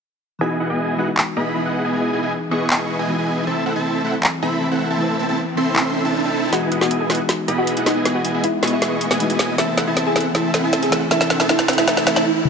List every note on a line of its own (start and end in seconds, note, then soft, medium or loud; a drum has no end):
0.39 0.95 E3 medium
0.39 0.96 G#3 medium
0.39 0.96 B3 medium
0.39 0.58 B3 medium
0.39 0.97 D#4 medium
0.39 0.58 E4 medium
0.39 0.58 G#4 medium
0.39 0.58 D#5 medium
0.39 0.58 G#5 medium
0.43 0.97 F#4 medium
0.60 0.68 B3 medium
0.60 0.68 E4 medium
0.60 0.68 G#4 medium
0.60 0.68 D#5 medium
0.60 0.68 F#5 medium
0.70 0.96 B3 medium
0.70 0.96 E4 medium
0.70 0.96 G#4 medium
0.70 0.96 D#5 medium
0.70 0.96 G#5 loud
0.96 1.52 E3 medium
0.96 1.53 G#3 medium
0.96 1.53 B3 medium
0.96 1.08 B3 medium
0.96 1.54 D#4 medium
0.96 1.08 E4 medium
0.96 1.08 G#4 medium
0.96 1.08 D#5 medium
0.96 1.08 F#5 medium
1.01 1.55 F#4 medium
1.17 clap loud
1.37 1.63 B3 medium
1.37 1.63 E4 medium
1.37 1.63 G#4 medium
1.37 1.63 D#5 medium
1.37 1.63 B5 loud
1.55 1.91 E3 medium
1.55 1.92 G#3 medium
1.55 1.92 B3 medium
1.55 1.92 D#4 medium
1.55 1.92 G#4 medium
1.65 1.82 B3 medium
1.65 1.82 E4 medium
1.65 1.82 G#4 medium
1.65 1.82 D#5 medium
1.65 1.82 F#5 medium
1.85 2.11 B3 medium
1.85 2.11 E4 medium
1.85 2.11 G#4 medium
1.85 2.11 D#5 medium
1.85 2.11 G#5 medium
1.92 2.48 E3 medium
1.92 2.49 G#3 medium
1.92 2.49 B3 medium
1.92 2.50 D#4 medium
1.92 2.50 G#4 medium
2.13 2.20 B3 medium
2.13 2.20 E4 medium
2.13 2.20 G#4 medium
2.13 2.20 D#5 medium
2.13 2.20 G#5 medium
2.23 2.32 B3 medium
2.23 2.32 E4 medium
2.23 2.32 G#4 medium
2.23 2.32 D#5 medium
2.23 2.32 G#5 medium
2.49 3.05 E3 medium
2.49 3.06 G#3 medium
2.49 2.97 B3 medium
2.49 3.06 B3 medium
2.49 2.97 E4 medium
2.49 2.97 G#4 medium
2.49 3.07 G#4 medium
2.49 2.97 D#5 medium
2.49 3.07 D#5 medium
2.49 2.97 C#6 medium
2.70 clap loud
2.99 3.16 B3 medium
2.99 3.16 E4 medium
2.99 3.16 G#4 medium
2.99 3.16 D#5 medium
2.99 3.16 G#5 loud
3.08 3.44 E3 medium
3.08 3.44 G#3 medium
3.08 3.45 B3 medium
3.08 3.45 D#4 medium
3.08 3.45 F#4 medium
3.18 3.45 B3 medium
3.18 3.45 E4 medium
3.18 3.45 G#4 medium
3.18 3.45 D#5 medium
3.18 3.45 G#5 medium
3.45 4.01 E3 medium
3.45 4.01 A3 medium
3.45 3.64 C4 medium
3.45 4.02 C4 medium
3.45 3.64 E4 medium
3.45 4.02 E4 medium
3.45 3.64 A4 medium
3.45 4.03 A4 medium
3.45 3.64 E5 medium
3.45 3.64 A5 medium
3.45 riser medium
3.66 3.73 C4 medium
3.66 3.73 E4 medium
3.66 3.73 A4 medium
3.66 3.73 E5 medium
3.66 3.73 F#5 loud
3.76 4.02 C4 medium
3.76 4.02 E4 medium
3.76 4.02 A4 medium
3.76 4.02 E5 medium
3.76 4.02 A5 loud
4.02 4.58 E3 medium
4.02 4.59 A3 medium
4.02 4.59 C4 medium
4.02 4.14 C4 medium
4.02 4.14 E4 medium
4.02 4.60 E4 medium
4.02 4.14 A4 medium
4.02 4.60 A4 medium
4.02 4.14 E5 medium
4.02 4.14 F#5 loud
4.23 clap loud
4.42 4.69 C4 medium
4.42 4.69 E4 medium
4.42 4.69 A4 medium
4.42 4.69 E5 medium
4.42 4.69 B5 loud
4.61 4.97 E3 medium
4.61 4.97 A3 medium
4.61 4.97 C4 medium
4.61 4.98 E4 medium
4.61 4.98 B4 medium
4.71 4.88 C4 medium
4.71 4.88 E4 medium
4.71 4.88 A4 medium
4.71 4.88 E5 medium
4.71 4.88 F#5 medium
4.90 5.17 C4 medium
4.90 5.17 E4 medium
4.90 5.17 A4 medium
4.90 5.17 E5 medium
4.90 5.17 A5 medium
4.98 5.54 E3 medium
4.98 5.54 A3 medium
4.98 5.55 C4 medium
4.98 5.55 E4 medium
5.02 5.56 B4 medium
5.19 5.26 C4 medium
5.19 5.26 E4 medium
5.19 5.26 A4 medium
5.19 5.26 E5 medium
5.19 5.26 A5 medium
5.29 5.38 C4 medium
5.29 5.38 E4 medium
5.29 5.38 A4 medium
5.29 5.38 E5 medium
5.29 5.38 A5 loud
5.55 6.11 E3 medium
5.55 6.12 A3 medium
5.55 6.03 C4 medium
5.55 6.12 C4 medium
5.55 6.03 E4 medium
5.55 6.13 E4 medium
5.55 6.03 A4 medium
5.55 6.03 E5 medium
5.55 6.03 C6 medium
5.76 clap loud
6.05 6.22 C4 medium
6.05 6.22 E4 medium
6.05 6.22 A4 medium
6.05 6.22 E5 medium
6.05 6.22 A5 loud
6.24 6.50 C4 medium
6.24 6.50 E4 medium
6.24 6.50 A4 medium
6.24 6.50 E5 medium
6.24 6.50 A5 medium
6.51 7.07 E3 medium
6.51 7.07 G#3 medium
6.51 7.08 B3 medium
6.51 6.69 B3 medium
6.51 7.08 D#4 medium
6.51 6.70 E4 medium
6.51 6.78 F#4 medium
6.51 7.09 F#4 medium
6.51 6.69 G#4 medium
6.51 6.69 D#5 medium
6.51 6.78 F#5 loud
6.51 6.69 G#5 medium
6.51 snare soft
6.51 closed hi-hat medium
6.51 riser medium
6.72 6.79 B3 medium
6.72 6.79 E4 medium
6.72 6.79 G#4 medium
6.72 6.79 D#5 medium
6.72 6.79 F#5 loud
6.72 closed hi-hat medium
6.81 7.08 B3 medium
6.81 7.08 E4 medium
6.81 6.99 F#4 medium
6.81 7.08 G#4 medium
6.81 7.08 D#5 medium
6.81 6.98 F#5 medium
6.81 7.08 G#5 loud
6.81 snare soft
6.91 closed hi-hat medium
7.00 7.26 G#4 medium
7.00 7.26 G#5 medium
7.08 7.64 E3 medium
7.08 7.64 G#3 medium
7.08 7.20 B3 medium
7.08 7.65 B3 medium
7.08 7.66 D#4 medium
7.08 7.20 E4 medium
7.08 7.20 G#4 medium
7.08 7.20 D#5 medium
7.08 7.20 F#5 loud
7.08 snare medium
7.08 closed hi-hat soft
7.12 7.66 F#4 medium
7.12 closed hi-hat medium
7.29 snare soft
7.29 closed hi-hat medium
7.48 7.74 B3 medium
7.48 7.75 E4 medium
7.48 7.75 G#4 medium
7.48 7.75 D#5 medium
7.48 7.75 B5 loud
7.48 closed hi-hat medium
7.58 7.84 F#4 medium
7.58 7.84 F#5 medium
7.67 8.02 E3 medium
7.67 8.03 G#3 medium
7.67 8.03 B3 medium
7.67 8.04 D#4 medium
7.67 8.04 G#4 medium
7.67 closed hi-hat medium
7.77 7.94 B3 medium
7.77 7.94 E4 medium
7.77 7.94 G#4 medium
7.77 7.94 D#5 medium
7.77 7.94 F#5 medium
7.77 closed hi-hat medium
7.86 8.12 D#4 medium
7.86 8.12 D#5 medium
7.86 snare medium
7.86 closed hi-hat medium
7.96 8.22 B3 medium
7.96 8.22 E4 medium
7.96 8.22 G#4 medium
7.96 8.22 D#5 medium
7.96 8.22 G#5 medium
8.03 8.60 E3 medium
8.03 8.60 G#3 medium
8.03 8.60 B3 medium
8.03 8.61 D#4 medium
8.03 8.61 G#4 loud
8.03 snare medium
8.03 closed hi-hat medium
8.15 8.41 F#4 medium
8.15 8.41 F#5 medium
8.25 8.32 B3 medium
8.25 8.32 E4 medium
8.25 8.32 G#4 medium
8.25 8.32 D#5 medium
8.25 8.32 G#5 medium
8.25 closed hi-hat medium
8.34 8.44 B3 medium
8.34 8.44 E4 medium
8.34 8.44 G#4 medium
8.34 8.44 D#5 medium
8.34 8.44 G#5 loud
8.44 8.70 E4 medium
8.44 8.70 E5 medium
8.44 closed hi-hat medium
8.61 9.17 E3 medium
8.61 9.17 G#3 medium
8.61 9.08 B3 medium
8.61 9.18 B3 medium
8.61 9.08 E4 medium
8.61 9.08 G#4 medium
8.61 9.19 G#4 medium
8.61 9.08 D#5 medium
8.61 9.18 D#5 medium
8.61 9.08 C#6 medium
8.61 snare medium
8.61 closed hi-hat medium
8.67 closed hi-hat medium
8.73 8.98 E4 medium
8.73 8.98 E5 medium
8.82 snare medium
8.82 closed hi-hat medium
9.01 closed hi-hat medium
9.11 9.27 B3 loud
9.11 9.27 E4 medium
9.11 9.27 G#4 medium
9.11 9.27 D#5 medium
9.11 9.27 G#5 loud
9.11 snare medium
9.19 9.55 E3 medium
9.19 9.56 G#3 medium
9.19 9.56 B3 medium
9.19 9.56 D#4 medium
9.19 9.57 F#4 medium
9.19 closed hi-hat medium
9.30 9.56 B3 medium
9.30 9.56 E4 medium
9.30 9.56 G#4 medium
9.30 9.56 D#5 medium
9.30 9.56 G#5 loud
9.30 closed hi-hat medium
9.39 snare medium
9.39 closed hi-hat medium
9.56 10.12 E3 medium
9.56 10.13 A3 medium
9.56 10.13 C4 medium
9.56 9.75 C4 medium
9.56 9.75 E4 medium
9.56 9.84 E4 medium
9.56 10.14 E4 medium
9.56 9.75 A4 medium
9.56 10.14 A4 medium
9.56 9.75 E5 medium
9.56 9.84 E5 loud
9.56 9.75 A5 medium
9.56 snare medium
9.56 closed hi-hat medium
9.77 9.85 C4 medium
9.77 9.85 E4 medium
9.77 9.85 A4 medium
9.77 9.85 E5 medium
9.77 9.85 F#5 loud
9.77 snare medium
9.77 closed hi-hat medium
9.87 10.13 C4 medium
9.87 10.13 E4 medium
9.87 10.04 E4 medium
9.87 10.13 A4 medium
9.87 10.13 E5 medium
9.87 10.04 E5 medium
9.87 10.13 A5 loud
9.97 snare medium
9.97 closed hi-hat medium
10.07 10.32 G#4 medium
10.07 10.32 G#5 loud
10.13 10.32 E3 medium
10.13 10.33 A3 medium
10.13 10.33 C4 medium
10.13 10.26 C4 medium
10.13 10.26 E4 medium
10.13 10.34 E4 medium
10.13 10.26 A4 medium
10.13 10.34 A4 medium
10.13 10.26 E5 medium
10.13 10.26 F#5 medium
10.13 snare medium
10.13 closed hi-hat medium
10.21 closed hi-hat medium
10.33 10.89 E3 medium
10.33 10.89 A3 medium
10.33 10.52 C4 medium
10.33 10.90 C4 medium
10.33 10.52 E4 medium
10.33 10.61 E4 medium
10.33 10.90 E4 medium
10.33 10.52 A4 medium
10.33 10.52 E5 medium
10.33 10.61 E5 medium
10.33 10.52 A5 medium
10.33 snare medium
10.33 closed hi-hat medium
10.37 10.91 A4 medium
10.54 10.61 C4 medium
10.54 10.61 E4 medium
10.54 10.61 A4 medium
10.54 10.61 E5 medium
10.54 10.61 F#5 loud
10.54 snare medium
10.54 closed hi-hat medium
10.63 10.90 C4 loud
10.63 10.90 E4 medium
10.63 10.81 E4 medium
10.63 10.90 A4 medium
10.63 10.90 E5 medium
10.63 10.81 E5 medium
10.63 10.90 A5 loud
10.73 snare medium
10.73 closed hi-hat medium
10.83 11.08 G#4 medium
10.83 11.08 G#5 medium
10.83 closed hi-hat medium
10.90 11.08 E3 medium
10.90 11.09 A3 medium
10.90 11.02 C4 medium
10.90 11.10 C4 medium
10.90 11.02 E4 medium
10.90 11.10 E4 medium
10.90 11.02 A4 medium
10.90 11.11 A4 medium
10.90 11.02 E5 medium
10.90 11.02 F#5 medium
10.90 snare medium
10.90 closed hi-hat medium
11.09 11.46 E3 medium
11.09 11.47 A3 medium
11.09 11.48 C4 medium
11.09 11.28 C4 medium
11.09 11.28 E4 medium
11.09 11.37 E4 medium
11.09 11.48 E4 medium
11.09 11.28 A4 medium
11.09 11.49 A4 loud
11.09 11.28 E5 medium
11.09 11.37 E5 loud
11.09 11.28 A5 medium
11.09 snare medium
11.09 closed hi-hat medium
11.21 snare medium
11.30 11.38 C4 medium
11.30 11.38 E4 medium
11.30 11.38 A4 medium
11.30 11.38 E5 medium
11.30 11.38 F#5 loud
11.30 snare medium
11.30 closed hi-hat medium
11.40 11.48 C4 loud
11.40 11.48 E4 medium
11.40 11.48 A4 medium
11.40 11.48 E5 medium
11.40 11.48 A5 loud
11.40 snare medium
11.47 11.84 E3 medium
11.47 11.85 A3 medium
11.47 11.86 C4 medium
11.47 11.66 C4 medium
11.47 11.75 E4 medium
11.47 11.66 E4 medium
11.47 11.86 E4 medium
11.47 11.66 A4 medium
11.47 11.87 A4 medium
11.47 11.75 E5 loud
11.47 11.66 E5 medium
11.47 11.66 A5 medium
11.47 snare medium
11.47 closed hi-hat medium
11.59 snare medium
11.68 11.76 C4 medium
11.68 11.76 E4 medium
11.68 11.76 A4 medium
11.68 11.76 E5 medium
11.68 11.76 F#5 loud
11.68 snare loud
11.68 closed hi-hat medium
11.73 closed hi-hat medium
11.78 11.86 C4 loud
11.78 11.86 E4 medium
11.78 11.86 A4 medium
11.78 11.86 E5 medium
11.78 11.86 A5 loud
11.78 snare medium
11.86 12.03 E3 medium
11.86 12.05 A3 medium
11.86 12.05 C4 medium
11.86 12.04 C4 medium
11.86 12.04 E4 medium
11.86 12.05 E4 medium
11.86 12.06 E4 medium
11.86 12.04 A4 medium
11.86 12.06 A4 medium
11.86 12.04 E5 medium
11.86 12.05 E5 loud
11.86 12.04 A5 medium
11.86 snare loud
11.86 closed hi-hat medium
11.97 snare medium
12.05 12.23 E3 loud
12.05 12.24 A3 medium
12.05 12.24 C4 medium
12.05 12.24 E4 medium
12.05 12.25 E4 medium
12.05 12.24 A4 medium
12.05 12.24 E5 medium
12.05 12.24 E5 loud
12.05 12.24 A5 medium
12.05 snare loud
12.05 closed hi-hat medium
12.09 12.25 A4 loud
12.16 snare medium
12.45 high tom medium